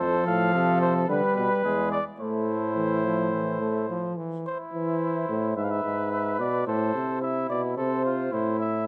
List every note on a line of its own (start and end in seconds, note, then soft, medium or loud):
0.00 0.26 F2 medium
0.00 1.07 F3 medium
0.00 0.53 A4 medium
0.00 0.25 C5 medium
0.26 0.53 A2 medium
0.26 0.80 F5 medium
0.54 1.08 C3 medium
0.54 1.08 A4 medium
0.81 0.94 C5 medium
1.08 1.22 D3 medium
1.08 1.63 G3 medium
1.08 1.36 B4 medium
1.08 1.64 B4 medium
1.36 1.49 B2 medium
1.36 1.91 B4 medium
1.64 2.00 E2 medium
1.64 2.00 G#3 medium
1.64 2.00 G#4 medium
1.92 2.04 D5 medium
2.20 4.13 A2 medium
2.20 2.73 A3 medium
2.20 4.13 E4 medium
2.20 4.13 C5 medium
2.76 3.06 E3 medium
3.05 3.33 F3 medium
3.33 3.61 E3 medium
3.61 3.89 A3 medium
3.90 4.19 F3 medium
4.17 4.45 E3 medium
4.45 5.53 E4 medium
4.45 4.58 C5 medium
4.74 5.25 E3 medium
4.74 5.55 C5 medium
5.29 5.56 A2 medium
5.56 5.84 G#2 medium
5.56 6.65 B4 medium
5.56 5.66 E5 medium
5.64 5.72 F5 medium
5.71 6.11 E5 medium
5.84 6.41 G#2 medium
6.12 6.39 E5 medium
6.40 6.66 B2 medium
6.40 6.66 D5 medium
6.67 6.94 A2 medium
6.67 7.21 A4 medium
6.67 7.21 C5 medium
6.95 7.49 C3 medium
7.22 7.76 E4 medium
7.22 7.49 E5 medium
7.50 7.77 B2 medium
7.50 7.62 D5 medium
7.77 8.32 C3 medium
7.77 8.05 A4 medium
7.77 8.32 C5 medium
8.05 8.35 F4 medium
8.33 8.87 A2 medium
8.33 8.87 E4 medium
8.33 8.59 C5 medium
8.60 8.87 E5 medium